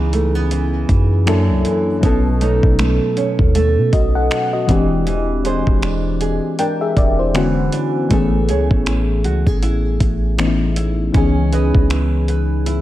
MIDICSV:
0, 0, Header, 1, 5, 480
1, 0, Start_track
1, 0, Key_signature, 4, "minor"
1, 0, Tempo, 759494
1, 1282, Time_signature, 4, 2, 24, 8
1, 8098, End_track
2, 0, Start_track
2, 0, Title_t, "FM electric piano"
2, 0, Program_c, 0, 5
2, 0, Control_c, 0, 64, 127
2, 0, Note_on_c, 0, 52, 69
2, 0, Note_on_c, 0, 59, 70
2, 0, Note_on_c, 0, 61, 66
2, 0, Note_on_c, 0, 63, 69
2, 0, Note_on_c, 0, 68, 81
2, 775, Note_off_c, 0, 59, 0
2, 779, Note_off_c, 0, 61, 0
2, 783, Note_off_c, 0, 63, 0
2, 786, Note_off_c, 0, 68, 0
2, 792, Note_off_c, 0, 52, 0
2, 798, Note_on_c, 0, 54, 73
2, 802, Note_on_c, 0, 58, 68
2, 806, Note_on_c, 0, 62, 70
2, 810, Control_c, 0, 64, 0
2, 810, Note_on_c, 0, 64, 69
2, 813, Note_on_c, 0, 69, 87
2, 930, Control_c, 0, 64, 127
2, 1263, Note_off_c, 0, 54, 0
2, 1271, Note_on_c, 0, 54, 76
2, 1279, Note_on_c, 0, 59, 68
2, 1282, Note_off_c, 0, 58, 0
2, 1284, Note_off_c, 0, 62, 0
2, 1286, Note_off_c, 0, 64, 0
2, 1286, Note_on_c, 0, 61, 67
2, 1288, Note_off_c, 0, 69, 0
2, 1291, Control_c, 0, 64, 0
2, 1294, Note_on_c, 0, 63, 64
2, 1302, Note_on_c, 0, 69, 83
2, 1395, Control_c, 0, 64, 127
2, 2468, Note_off_c, 0, 69, 0
2, 2485, Note_on_c, 0, 75, 64
2, 2489, Note_on_c, 0, 66, 55
2, 2616, Note_off_c, 0, 75, 0
2, 2618, Note_off_c, 0, 66, 0
2, 2624, Note_on_c, 0, 78, 70
2, 2628, Note_on_c, 0, 69, 59
2, 2851, Note_off_c, 0, 78, 0
2, 2853, Note_off_c, 0, 69, 0
2, 2864, Note_on_c, 0, 75, 64
2, 2868, Note_on_c, 0, 66, 55
2, 2931, Note_off_c, 0, 54, 0
2, 2935, Note_off_c, 0, 59, 0
2, 2939, Note_off_c, 0, 61, 0
2, 2943, Note_off_c, 0, 63, 0
2, 2951, Note_on_c, 0, 52, 76
2, 2958, Note_on_c, 0, 56, 66
2, 2966, Note_on_c, 0, 60, 68
2, 2971, Control_c, 0, 64, 0
2, 2974, Note_on_c, 0, 62, 67
2, 2981, Note_on_c, 0, 67, 77
2, 3065, Control_c, 0, 64, 127
2, 3091, Note_off_c, 0, 75, 0
2, 3093, Note_off_c, 0, 66, 0
2, 4148, Note_off_c, 0, 67, 0
2, 4165, Note_on_c, 0, 79, 61
2, 4169, Note_on_c, 0, 70, 54
2, 4296, Note_off_c, 0, 79, 0
2, 4298, Note_off_c, 0, 70, 0
2, 4304, Note_on_c, 0, 76, 64
2, 4308, Note_on_c, 0, 68, 56
2, 4399, Note_off_c, 0, 76, 0
2, 4401, Note_off_c, 0, 68, 0
2, 4406, Note_on_c, 0, 74, 69
2, 4537, Note_off_c, 0, 74, 0
2, 4545, Note_on_c, 0, 72, 62
2, 4549, Note_on_c, 0, 64, 50
2, 4611, Note_off_c, 0, 52, 0
2, 4615, Note_off_c, 0, 56, 0
2, 4619, Note_off_c, 0, 60, 0
2, 4623, Note_off_c, 0, 62, 0
2, 4638, Note_on_c, 0, 50, 75
2, 4642, Note_on_c, 0, 56, 69
2, 4646, Note_on_c, 0, 59, 71
2, 4650, Control_c, 0, 64, 0
2, 4650, Note_on_c, 0, 61, 69
2, 4654, Note_on_c, 0, 66, 78
2, 4765, Control_c, 0, 64, 127
2, 4771, Note_off_c, 0, 72, 0
2, 4774, Note_off_c, 0, 64, 0
2, 5111, Note_on_c, 0, 52, 70
2, 5119, Note_off_c, 0, 59, 0
2, 5119, Note_on_c, 0, 57, 65
2, 5120, Note_off_c, 0, 50, 0
2, 5123, Note_off_c, 0, 56, 0
2, 5126, Note_off_c, 0, 61, 0
2, 5127, Note_on_c, 0, 59, 70
2, 5128, Note_off_c, 0, 66, 0
2, 5131, Control_c, 0, 64, 0
2, 5134, Note_on_c, 0, 61, 69
2, 5142, Note_on_c, 0, 68, 83
2, 5248, Control_c, 0, 64, 127
2, 6532, Note_off_c, 0, 52, 0
2, 6536, Note_off_c, 0, 57, 0
2, 6539, Note_off_c, 0, 59, 0
2, 6543, Note_off_c, 0, 61, 0
2, 6547, Note_off_c, 0, 68, 0
2, 6559, Note_on_c, 0, 52, 57
2, 6563, Note_on_c, 0, 57, 55
2, 6567, Note_on_c, 0, 59, 53
2, 6571, Note_on_c, 0, 61, 54
2, 6575, Note_on_c, 0, 63, 50
2, 6616, Note_off_c, 0, 63, 0
2, 6616, Note_on_c, 0, 64, 63
2, 7030, Note_on_c, 0, 51, 55
2, 7031, Note_off_c, 0, 59, 0
2, 7038, Note_off_c, 0, 61, 0
2, 7038, Note_on_c, 0, 59, 66
2, 7041, Note_off_c, 0, 52, 0
2, 7043, Note_off_c, 0, 57, 0
2, 7046, Note_on_c, 0, 61, 66
2, 7051, Control_c, 0, 64, 0
2, 7054, Note_on_c, 0, 63, 67
2, 7062, Note_on_c, 0, 68, 81
2, 7069, Note_off_c, 0, 64, 0
2, 7072, Note_on_c, 0, 52, 72
2, 7084, Note_off_c, 0, 51, 0
2, 7147, Control_c, 0, 64, 127
2, 8098, Note_off_c, 0, 52, 0
2, 8098, Note_off_c, 0, 59, 0
2, 8098, Note_off_c, 0, 61, 0
2, 8098, Note_off_c, 0, 63, 0
2, 8098, Note_off_c, 0, 68, 0
2, 8098, End_track
3, 0, Start_track
3, 0, Title_t, "Nylon-string guitar"
3, 0, Program_c, 1, 24
3, 0, Note_on_c, 1, 49, 84
3, 0, Note_on_c, 1, 52, 59
3, 0, Note_on_c, 1, 59, 59
3, 0, Note_on_c, 1, 63, 64
3, 80, Note_off_c, 1, 59, 0
3, 83, Note_on_c, 1, 57, 60
3, 221, Note_off_c, 1, 57, 0
3, 221, Note_on_c, 1, 59, 47
3, 316, Note_off_c, 1, 52, 0
3, 323, Note_on_c, 1, 52, 69
3, 803, Note_on_c, 1, 42, 76
3, 858, Note_off_c, 1, 59, 0
3, 859, Note_off_c, 1, 49, 0
3, 859, Note_off_c, 1, 52, 0
3, 862, Note_off_c, 1, 63, 0
3, 1043, Note_on_c, 1, 52, 61
3, 1281, Note_off_c, 1, 42, 0
3, 1283, Note_on_c, 1, 47, 84
3, 1339, Note_off_c, 1, 52, 0
3, 1522, Note_on_c, 1, 57, 55
3, 1526, Note_on_c, 1, 61, 56
3, 1530, Note_on_c, 1, 63, 62
3, 1754, Note_off_c, 1, 57, 0
3, 1761, Note_on_c, 1, 57, 61
3, 1994, Note_off_c, 1, 61, 0
3, 2002, Note_on_c, 1, 61, 62
3, 2235, Note_off_c, 1, 57, 0
3, 2242, Note_on_c, 1, 57, 73
3, 2962, Note_on_c, 1, 52, 80
3, 3018, Note_off_c, 1, 57, 0
3, 3018, Note_off_c, 1, 61, 0
3, 3019, Note_off_c, 1, 47, 0
3, 3022, Note_off_c, 1, 63, 0
3, 3200, Note_off_c, 1, 52, 0
3, 3203, Note_on_c, 1, 52, 84
3, 3442, Note_on_c, 1, 62, 60
3, 3446, Note_on_c, 1, 68, 55
3, 3450, Note_on_c, 1, 72, 66
3, 3680, Note_off_c, 1, 62, 0
3, 3683, Note_on_c, 1, 62, 61
3, 3921, Note_off_c, 1, 68, 0
3, 3923, Note_on_c, 1, 68, 59
3, 4156, Note_off_c, 1, 62, 0
3, 4164, Note_on_c, 1, 62, 72
3, 4641, Note_off_c, 1, 52, 0
3, 4644, Note_on_c, 1, 52, 78
3, 4699, Note_off_c, 1, 62, 0
3, 4702, Note_off_c, 1, 72, 0
3, 4884, Note_on_c, 1, 62, 60
3, 4903, Note_off_c, 1, 68, 0
3, 5124, Note_on_c, 1, 57, 85
3, 5179, Note_off_c, 1, 62, 0
3, 5364, Note_on_c, 1, 64, 56
3, 5368, Note_on_c, 1, 68, 58
3, 5372, Note_on_c, 1, 73, 61
3, 5601, Note_off_c, 1, 64, 0
3, 5604, Note_on_c, 1, 64, 59
3, 5841, Note_off_c, 1, 68, 0
3, 5844, Note_on_c, 1, 66, 61
3, 5863, Note_off_c, 1, 52, 0
3, 5982, Note_off_c, 1, 66, 0
3, 5982, Note_on_c, 1, 68, 47
3, 6080, Note_off_c, 1, 64, 0
3, 6083, Note_on_c, 1, 64, 71
3, 6801, Note_off_c, 1, 64, 0
3, 6803, Note_on_c, 1, 64, 61
3, 7040, Note_off_c, 1, 57, 0
3, 7042, Note_on_c, 1, 61, 84
3, 7098, Note_off_c, 1, 68, 0
3, 7280, Note_off_c, 1, 64, 0
3, 7283, Note_on_c, 1, 64, 59
3, 7287, Note_on_c, 1, 71, 58
3, 7288, Note_off_c, 1, 73, 0
3, 7291, Note_on_c, 1, 75, 61
3, 7520, Note_off_c, 1, 64, 0
3, 7522, Note_on_c, 1, 64, 60
3, 7755, Note_off_c, 1, 71, 0
3, 7762, Note_on_c, 1, 71, 57
3, 7994, Note_off_c, 1, 64, 0
3, 8002, Note_on_c, 1, 64, 71
3, 8098, Note_off_c, 1, 61, 0
3, 8098, Note_off_c, 1, 64, 0
3, 8098, Note_off_c, 1, 71, 0
3, 8098, Note_off_c, 1, 75, 0
3, 8098, End_track
4, 0, Start_track
4, 0, Title_t, "808-style bass"
4, 0, Program_c, 2, 38
4, 0, Note_on_c, 2, 37, 97
4, 538, Note_off_c, 2, 37, 0
4, 563, Note_on_c, 2, 42, 107
4, 943, Note_on_c, 2, 36, 94
4, 952, Note_off_c, 2, 42, 0
4, 1038, Note_off_c, 2, 36, 0
4, 1284, Note_on_c, 2, 35, 108
4, 1647, Note_off_c, 2, 35, 0
4, 1663, Note_on_c, 2, 35, 102
4, 1893, Note_off_c, 2, 35, 0
4, 2142, Note_on_c, 2, 39, 98
4, 2381, Note_on_c, 2, 47, 94
4, 2391, Note_off_c, 2, 39, 0
4, 2477, Note_off_c, 2, 47, 0
4, 2482, Note_on_c, 2, 35, 105
4, 2713, Note_off_c, 2, 35, 0
4, 2962, Note_on_c, 2, 28, 101
4, 3557, Note_off_c, 2, 28, 0
4, 3583, Note_on_c, 2, 28, 96
4, 4043, Note_off_c, 2, 28, 0
4, 4403, Note_on_c, 2, 28, 100
4, 4863, Note_off_c, 2, 28, 0
4, 5124, Note_on_c, 2, 33, 109
4, 5364, Note_on_c, 2, 37, 94
4, 5374, Note_off_c, 2, 33, 0
4, 5496, Note_off_c, 2, 37, 0
4, 5503, Note_on_c, 2, 33, 105
4, 5844, Note_on_c, 2, 37, 99
4, 5853, Note_off_c, 2, 33, 0
4, 5975, Note_off_c, 2, 37, 0
4, 5983, Note_on_c, 2, 33, 93
4, 6309, Note_off_c, 2, 33, 0
4, 6323, Note_on_c, 2, 33, 101
4, 7018, Note_off_c, 2, 33, 0
4, 7044, Note_on_c, 2, 37, 116
4, 7407, Note_off_c, 2, 37, 0
4, 7424, Note_on_c, 2, 37, 96
4, 8098, Note_off_c, 2, 37, 0
4, 8098, End_track
5, 0, Start_track
5, 0, Title_t, "Drums"
5, 82, Note_on_c, 9, 42, 60
5, 145, Note_off_c, 9, 42, 0
5, 323, Note_on_c, 9, 42, 63
5, 386, Note_off_c, 9, 42, 0
5, 562, Note_on_c, 9, 36, 91
5, 563, Note_on_c, 9, 42, 65
5, 626, Note_off_c, 9, 36, 0
5, 626, Note_off_c, 9, 42, 0
5, 803, Note_on_c, 9, 42, 71
5, 805, Note_on_c, 9, 26, 103
5, 866, Note_off_c, 9, 42, 0
5, 868, Note_off_c, 9, 26, 0
5, 1042, Note_on_c, 9, 42, 73
5, 1105, Note_off_c, 9, 42, 0
5, 1283, Note_on_c, 9, 36, 100
5, 1283, Note_on_c, 9, 42, 69
5, 1346, Note_off_c, 9, 42, 0
5, 1347, Note_off_c, 9, 36, 0
5, 1524, Note_on_c, 9, 42, 56
5, 1587, Note_off_c, 9, 42, 0
5, 1663, Note_on_c, 9, 36, 88
5, 1726, Note_off_c, 9, 36, 0
5, 1762, Note_on_c, 9, 42, 68
5, 1765, Note_on_c, 9, 26, 109
5, 1825, Note_off_c, 9, 42, 0
5, 1829, Note_off_c, 9, 26, 0
5, 2003, Note_on_c, 9, 42, 59
5, 2066, Note_off_c, 9, 42, 0
5, 2142, Note_on_c, 9, 36, 88
5, 2205, Note_off_c, 9, 36, 0
5, 2244, Note_on_c, 9, 42, 66
5, 2307, Note_off_c, 9, 42, 0
5, 2483, Note_on_c, 9, 36, 91
5, 2483, Note_on_c, 9, 42, 63
5, 2546, Note_off_c, 9, 36, 0
5, 2546, Note_off_c, 9, 42, 0
5, 2723, Note_on_c, 9, 42, 68
5, 2725, Note_on_c, 9, 26, 102
5, 2786, Note_off_c, 9, 42, 0
5, 2788, Note_off_c, 9, 26, 0
5, 2963, Note_on_c, 9, 36, 94
5, 2963, Note_on_c, 9, 42, 75
5, 3026, Note_off_c, 9, 36, 0
5, 3026, Note_off_c, 9, 42, 0
5, 3203, Note_on_c, 9, 42, 70
5, 3266, Note_off_c, 9, 42, 0
5, 3444, Note_on_c, 9, 42, 53
5, 3507, Note_off_c, 9, 42, 0
5, 3583, Note_on_c, 9, 36, 87
5, 3646, Note_off_c, 9, 36, 0
5, 3681, Note_on_c, 9, 42, 66
5, 3685, Note_on_c, 9, 26, 110
5, 3745, Note_off_c, 9, 42, 0
5, 3748, Note_off_c, 9, 26, 0
5, 3923, Note_on_c, 9, 42, 61
5, 3986, Note_off_c, 9, 42, 0
5, 4163, Note_on_c, 9, 42, 64
5, 4226, Note_off_c, 9, 42, 0
5, 4403, Note_on_c, 9, 36, 93
5, 4403, Note_on_c, 9, 42, 64
5, 4466, Note_off_c, 9, 36, 0
5, 4466, Note_off_c, 9, 42, 0
5, 4643, Note_on_c, 9, 42, 71
5, 4645, Note_on_c, 9, 26, 106
5, 4706, Note_off_c, 9, 42, 0
5, 4708, Note_off_c, 9, 26, 0
5, 4882, Note_on_c, 9, 42, 68
5, 4945, Note_off_c, 9, 42, 0
5, 5123, Note_on_c, 9, 42, 72
5, 5124, Note_on_c, 9, 36, 104
5, 5186, Note_off_c, 9, 42, 0
5, 5187, Note_off_c, 9, 36, 0
5, 5364, Note_on_c, 9, 42, 56
5, 5427, Note_off_c, 9, 42, 0
5, 5503, Note_on_c, 9, 36, 92
5, 5567, Note_off_c, 9, 36, 0
5, 5602, Note_on_c, 9, 42, 66
5, 5605, Note_on_c, 9, 26, 113
5, 5665, Note_off_c, 9, 42, 0
5, 5668, Note_off_c, 9, 26, 0
5, 5842, Note_on_c, 9, 42, 60
5, 5906, Note_off_c, 9, 42, 0
5, 5982, Note_on_c, 9, 36, 82
5, 6046, Note_off_c, 9, 36, 0
5, 6083, Note_on_c, 9, 42, 64
5, 6147, Note_off_c, 9, 42, 0
5, 6323, Note_on_c, 9, 36, 90
5, 6323, Note_on_c, 9, 42, 67
5, 6386, Note_off_c, 9, 36, 0
5, 6386, Note_off_c, 9, 42, 0
5, 6564, Note_on_c, 9, 42, 68
5, 6566, Note_on_c, 9, 26, 105
5, 6627, Note_off_c, 9, 42, 0
5, 6629, Note_off_c, 9, 26, 0
5, 6803, Note_on_c, 9, 42, 73
5, 6866, Note_off_c, 9, 42, 0
5, 7043, Note_on_c, 9, 42, 69
5, 7044, Note_on_c, 9, 36, 107
5, 7106, Note_off_c, 9, 42, 0
5, 7107, Note_off_c, 9, 36, 0
5, 7284, Note_on_c, 9, 42, 54
5, 7347, Note_off_c, 9, 42, 0
5, 7423, Note_on_c, 9, 36, 90
5, 7486, Note_off_c, 9, 36, 0
5, 7522, Note_on_c, 9, 42, 65
5, 7525, Note_on_c, 9, 26, 111
5, 7585, Note_off_c, 9, 42, 0
5, 7589, Note_off_c, 9, 26, 0
5, 7763, Note_on_c, 9, 42, 58
5, 7826, Note_off_c, 9, 42, 0
5, 8004, Note_on_c, 9, 42, 65
5, 8067, Note_off_c, 9, 42, 0
5, 8098, End_track
0, 0, End_of_file